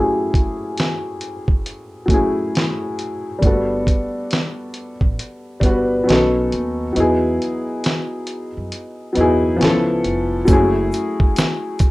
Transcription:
0.00 2.06 F#3 medium
0.00 2.08 A3 medium
0.00 2.10 C#4 medium
0.00 2.12 E4 medium
0.00 3.44 G4 medium
0.00 2.14 G#4 medium
0.34 kick medium
0.34 closed hi-hat medium
0.78 snare loud
0.78 closed hi-hat medium
1.21 closed hi-hat medium
1.48 kick medium
1.66 closed hi-hat medium
2.06 3.25 F#3 medium
2.06 3.26 A3 medium
2.06 kick medium
2.10 3.27 C#4 medium
2.10 3.28 E4 medium
2.10 closed hi-hat medium
2.14 3.29 G#4 medium
2.55 snare loud
2.55 closed hi-hat medium
2.99 closed hi-hat medium
3.38 4.92 G3 medium
3.38 3.50 A3 medium
3.38 kick loud
3.42 3.83 G1 medium
3.42 4.94 D4 medium
3.42 4.95 F#4 medium
3.42 closed hi-hat medium
3.47 4.96 B3 medium
3.47 4.96 A4 medium
3.87 kick medium
3.87 closed hi-hat medium
4.31 snare loud
4.31 closed hi-hat medium
4.74 closed hi-hat medium
5.01 5.17 A1 medium
5.01 kick medium
5.19 closed hi-hat medium
5.60 6.03 G1 medium
5.60 6.06 G3 medium
5.60 6.04 B3 medium
5.60 6.08 D4 medium
5.60 kick medium
5.60 closed hi-hat medium
5.65 6.08 F#4 medium
5.65 6.10 B4 medium
6.04 6.83 F#3 medium
6.04 6.84 B3 medium
6.04 6.85 C#4 medium
6.09 6.48 B1 medium
6.09 6.86 D#4 medium
6.09 6.88 A4 medium
6.09 snare loud
6.09 closed hi-hat medium
6.52 6.93 D#2 medium
6.52 closed hi-hat medium
6.93 8.46 F#3 medium
6.93 8.47 B3 medium
6.93 8.48 D#4 medium
6.93 closed hi-hat medium
6.97 7.37 E2 loud
6.97 8.48 E4 medium
6.97 8.49 G#4 medium
7.42 closed hi-hat medium
7.84 snare loud
7.84 closed hi-hat medium
8.27 closed hi-hat medium
8.57 8.71 F#2 medium
8.72 closed hi-hat medium
9.13 9.59 F#3 medium
9.13 9.57 B3 medium
9.13 closed hi-hat medium
9.17 9.57 E2 medium
9.17 9.61 D#4 medium
9.17 9.61 E4 medium
9.17 9.63 G#4 medium
9.56 10.36 F3 medium
9.56 10.37 B3 medium
9.61 10.01 C#2 medium
9.61 10.38 C#4 medium
9.61 10.39 E4 medium
9.61 10.40 A4 medium
9.61 snare loud
9.61 closed hi-hat medium
10.04 10.45 F1 medium
10.04 closed hi-hat medium
10.45 10.89 F#1 loud
10.45 11.91 F#3 medium
10.45 11.91 A3 medium
10.45 11.91 C#4 medium
10.45 kick loud
10.45 closed hi-hat medium
10.45 shaker medium
10.51 11.91 E4 medium
10.51 11.91 G#4 medium
10.92 closed hi-hat medium
10.92 shaker medium
11.20 kick medium
11.36 snare loud
11.36 closed hi-hat medium
11.36 shaker medium
11.79 kick loud
11.79 closed hi-hat medium
11.79 shaker medium

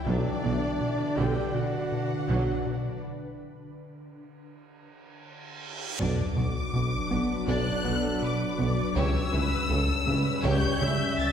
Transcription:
0.06 0.15 B1 medium
0.06 0.22 B1 medium
0.06 0.14 B2 medium
0.06 0.29 B2 medium
0.06 2.99 D3 medium
0.06 3.04 D3 medium
0.06 0.41 F#3 medium
0.06 3.03 D4 medium
0.06 1.19 D4 medium
0.06 2.99 D4 medium
0.06 3.04 D4 medium
0.06 3.04 B4 medium
0.06 1.15 D5 loud
0.06 3.00 D5 medium
0.43 0.59 B1 medium
0.43 0.53 B1 medium
0.43 0.52 B2 medium
0.43 0.51 E3 medium
0.43 0.66 B3 medium
0.81 1.03 B2 medium
1.17 1.26 B1 medium
1.17 1.33 B1 medium
1.17 1.40 B2 medium
1.17 1.26 B2 medium
1.17 1.52 D3 medium
1.17 1.56 G4 loud
1.17 1.55 G5 medium
1.54 1.77 B2 medium
1.54 3.03 F#4 medium
1.54 3.03 F#5 medium
1.92 2.14 B2 medium
2.29 2.44 B1 medium
2.29 2.37 B1 medium
2.29 2.37 B2 medium
2.29 2.52 B2 medium
2.29 2.63 F#3 medium
2.66 2.89 B2 medium
3.03 reverse cymbal medium
5.99 6.08 B1 medium
5.99 6.15 B1 medium
5.99 6.22 B2 medium
5.99 6.07 B2 medium
5.99 8.92 F#3 medium
5.99 8.93 F#3 medium
5.99 6.34 D4 medium
5.99 8.92 D4 medium
5.99 8.92 F#4 medium
5.99 8.92 B4 medium
5.99 6.34 D5 medium
5.99 7.44 D6 medium
5.99 sub drop medium
6.37 6.45 B1 medium
6.37 6.53 B1 medium
6.37 6.59 B2 medium
6.37 6.45 B2 medium
6.37 6.45 B3 medium
6.37 6.45 F#4 medium
6.74 6.82 B1 soft
6.74 6.89 B1 medium
6.74 6.96 B2 medium
6.74 6.82 B2 medium
6.74 6.82 B3 medium
6.74 6.82 B4 medium
7.11 7.19 B1 medium
7.11 7.26 B1 soft
7.11 7.19 B2 medium
7.11 7.33 B3 medium
7.11 7.19 B3 medium
7.11 7.19 F#4 medium
7.48 7.63 B1 medium
7.48 7.57 B1 medium
7.48 7.56 B2 medium
7.48 7.70 B2 medium
7.48 7.82 D4 medium
7.48 7.82 D5 medium
7.48 7.83 D5 medium
7.48 8.21 F#6 loud
7.85 8.00 B1 medium
7.85 7.93 B1 medium
7.85 7.93 B2 medium
7.85 8.07 B3 medium
7.85 7.93 B3 medium
7.85 7.93 F#4 medium
7.85 8.22 A4 medium
8.22 8.44 B2 medium
8.22 8.59 B4 medium
8.22 8.96 D6 medium
8.59 8.74 B1 medium
8.59 8.68 B1 medium
8.59 8.81 B2 medium
8.59 8.67 B2 medium
8.59 8.67 B3 medium
8.59 8.67 F#4 medium
8.59 8.96 D5 medium
8.95 9.18 C#2 loud
8.95 9.11 C#2 medium
8.95 9.05 C#2 medium
8.95 9.04 C#3 medium
8.95 11.32 C#3 medium
8.95 11.32 G3 medium
8.95 11.32 C#4 medium
8.95 9.30 G4 medium
8.95 11.32 G4 medium
8.95 9.30 C#5 medium
8.95 9.33 C#5 medium
8.95 11.32 C#5 medium
8.95 10.44 E6 loud
9.33 9.48 C#2 medium
9.33 9.56 C#2 medium
9.33 9.42 C#2 medium
9.33 9.41 C#3 medium
9.33 9.41 C#4 medium
9.33 9.41 E4 medium
9.33 9.70 B4 medium
9.69 9.92 C#2 medium
9.69 9.85 C#2 medium
9.69 9.79 C#2 medium
9.69 9.78 C#3 medium
9.69 9.77 E4 medium
9.69 9.78 G4 medium
9.69 10.06 A4 medium
10.07 10.16 C#2 medium
10.07 10.22 C#2 medium
10.07 10.15 C#3 medium
10.07 10.30 C#3 medium
10.07 10.16 C#4 medium
10.07 10.16 E4 medium
10.07 10.43 B4 medium
10.43 10.66 C#2 loud
10.43 10.59 C#2 loud
10.43 10.53 C#2 loud
10.43 10.52 C#3 medium
10.43 10.78 G4 medium
10.43 10.78 C#5 medium
10.43 10.81 C#5 medium
10.43 11.19 G6 loud
10.81 10.96 C#2 medium
10.81 10.90 C#2 medium
10.81 10.89 C#3 medium
10.81 11.04 C#3 medium
10.81 10.89 C#4 medium
10.81 10.89 E4 medium
10.81 11.32 E5 loud
11.18 11.32 C#2 medium
11.18 11.32 A6 loud

